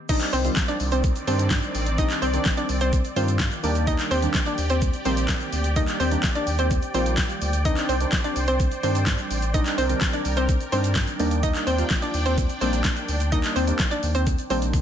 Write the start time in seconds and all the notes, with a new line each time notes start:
0.09 D#3 G3 C4 D4 D#4 D5 D#5, kick, crash, shaker
0.21 clap, closed hi-hat, shaker
0.33 C2 C4 C5, open hi-hat, shaker
0.45 D#3 G3 C4 F4, closed hi-hat, shaker
0.56 kick, snare, clap, shaker
0.68 D4 D5, closed hi-hat, shaker
0.80 C2, open hi-hat, shaker
0.92 C4 C5, closed hi-hat, shaker
1.03 kick, shaker
1.16 closed hi-hat, shaker
1.27 G2 D#3 G3 C4 D4 C5, open hi-hat, shaker
1.39 closed hi-hat, shaker
1.51 kick, snare, clap, shaker
1.63 closed hi-hat, shaker
1.75 A1, open hi-hat, shaker
1.86 closed hi-hat, shaker
1.98 D#3 G3 C4 D4 D#4 D#5, kick, shaker
2.10 clap, closed hi-hat, shaker
2.22 C2 C4 C5, open hi-hat, shaker
2.33 D#3 G3 C4 D4, closed hi-hat, shaker
2.45 kick, snare, clap, shaker
2.57 D4 D5, closed hi-hat, shaker
2.69 C2, open hi-hat, shaker
2.81 C4 C5, closed hi-hat, shaker
2.92 kick, shaker
3.04 closed hi-hat, shaker
3.16 G2 D#3 G3 C4 F4 C5, open hi-hat, shaker
3.28 closed hi-hat, shaker
3.40 kick, snare, clap, shaker
3.52 closed hi-hat, shaker
3.63 D#2 D#3 G3 A#3 D4 G4 D5 G5, open hi-hat, shaker
3.75 closed hi-hat, shaker
3.87 D#4 D#5, kick, shaker
3.99 clap, closed hi-hat, shaker
4.11 D#2 C4 C5, open hi-hat, shaker
4.22 D#3 G3 A#3 D4, closed hi-hat, shaker
4.34 kick, snare, clap, shaker
4.46 D4 D5, closed hi-hat, shaker
4.58 D#2, open hi-hat, shaker
4.70 C4 C5, closed hi-hat, shaker
4.81 kick, shaker
4.93 closed hi-hat, shaker
5.05 A#1 D#3 G3 A#3 C4 C5, open hi-hat, shaker
5.17 closed hi-hat, shaker
5.29 kick, snare, clap, shaker
5.40 closed hi-hat, shaker
5.53 D2, open hi-hat, shaker
5.64 closed hi-hat, shaker
5.76 D#3 G3 A#3 D4 D#4 D#5, kick, shaker
5.88 clap, closed hi-hat, shaker
6.00 D#2 C4 C5, open hi-hat, shaker
6.11 D#3 G3 A#3 D4, closed hi-hat, shaker
6.23 kick, snare, clap, shaker
6.35 D4 D5, closed hi-hat, shaker
6.47 D#2, open hi-hat, shaker
6.59 C4 C5, closed hi-hat, shaker
6.70 kick, shaker
6.82 closed hi-hat, shaker
6.94 A#1 D#3 G3 A#3 C4 F4 C5, open hi-hat, shaker
7.06 closed hi-hat, shaker
7.18 kick, snare, clap, shaker
7.30 closed hi-hat, shaker
7.42 D2, open hi-hat, shaker
7.53 closed hi-hat, shaker
7.65 D#3 G3 C4 D4 D#4 C5 D#5, kick, shaker
7.77 clap, closed hi-hat, shaker
7.89 C2 C4 C5, open hi-hat, shaker
8.00 D#3 G3 C4 D4, closed hi-hat, shaker
8.12 kick, snare, clap, shaker
8.24 D4 D5, closed hi-hat, shaker
8.36 C2, open hi-hat, shaker
8.48 C4 C5, closed hi-hat, shaker
8.59 kick, shaker
8.71 closed hi-hat, shaker
8.83 G2 D#3 G3 C4 D4 C5, open hi-hat, shaker
8.95 closed hi-hat, shaker
9.07 kick, snare, clap, shaker
9.19 closed hi-hat, shaker
9.31 A1, open hi-hat, shaker
9.42 closed hi-hat, shaker
9.54 D#3 G3 C4 D4 D#4 A#4 D#5, kick, shaker
9.66 clap, closed hi-hat, shaker
9.78 C2 C4 C5, open hi-hat, shaker
9.89 D#3 G3 C4 D4, closed hi-hat, shaker
10.01 kick, snare, clap, shaker
10.13 D4 D5, closed hi-hat, shaker
10.25 C2, open hi-hat, shaker
10.37 C4 C5, closed hi-hat, shaker
10.49 kick, shaker
10.60 closed hi-hat, shaker
10.72 G2 D#3 G3 C4 D4 C5, open hi-hat, shaker
10.84 closed hi-hat, shaker
10.96 kick, snare, clap, shaker
11.07 closed hi-hat, shaker
11.19 D#2 D#3 G3 A#3 D4 D5 G5, open hi-hat, shaker
11.31 closed hi-hat, shaker
11.43 D#4 D#5, kick, shaker
11.55 clap, closed hi-hat, shaker
11.67 D#2 C4 C5, open hi-hat, shaker
11.78 D#3 G3 A#3 F4, closed hi-hat, shaker
11.90 kick, snare, clap, shaker
12.02 D4 D5, closed hi-hat, shaker
12.14 D#2, open hi-hat, shaker
12.26 C4 C5, closed hi-hat, shaker
12.37 kick, shaker
12.49 closed hi-hat, shaker
12.61 A#1 D#3 G3 A#3 C4 D4 C5, open hi-hat, shaker
12.73 closed hi-hat, shaker
12.85 kick, snare, clap, shaker
12.96 closed hi-hat, shaker
13.08 D2, open hi-hat, shaker
13.20 closed hi-hat, shaker
13.32 D#3 G3 A#3 D4 D#4 D#5, kick, shaker
13.44 clap, closed hi-hat, shaker
13.56 D#2 C4 C5, open hi-hat, shaker
13.67 D#3 G3 A#3 D4, closed hi-hat, shaker
13.79 kick, snare, clap, shaker
13.91 D4 D5, closed hi-hat, shaker
14.03 D#2, open hi-hat, shaker
14.15 C4 C5, closed hi-hat, shaker
14.26 kick, shaker
14.38 closed hi-hat, shaker
14.50 A#1 D#3 G3 A#3 C4 D4 C5, open hi-hat, shaker
14.62 closed hi-hat, shaker
14.74 kick, high tom, shaker